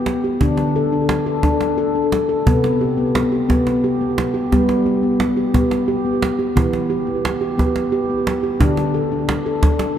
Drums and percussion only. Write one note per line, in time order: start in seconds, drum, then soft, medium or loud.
0.06 cajon slap soft
0.41 cajon bass soft
0.57 cajon slap soft
1.09 cajon slap medium
1.43 cajon bass medium
1.43 cajon slap soft
1.61 cajon slap soft
2.12 cajon slap medium
2.47 cajon bass medium
2.64 cajon slap soft
3.15 cajon slap medium
3.50 cajon bass medium
3.50 cajon slap soft
3.67 cajon slap soft
4.18 cajon slap medium
4.52 cajon bass soft
4.52 cajon slap soft
4.69 cajon slap soft
4.87 cajon slap soft
5.20 cajon slap medium
5.37 cajon slap soft
5.54 cajon bass medium
5.71 cajon slap soft
6.22 cajon slap medium
6.40 cajon slap soft
6.57 cajon bass medium
6.73 cajon slap soft
7.25 cajon slap medium
7.59 cajon bass medium
7.59 cajon slap soft
7.76 cajon slap soft
8.27 cajon slap medium
8.61 cajon bass medium
8.77 cajon slap soft
9.29 cajon slap medium
9.63 cajon bass medium
9.63 cajon slap soft
9.79 cajon slap medium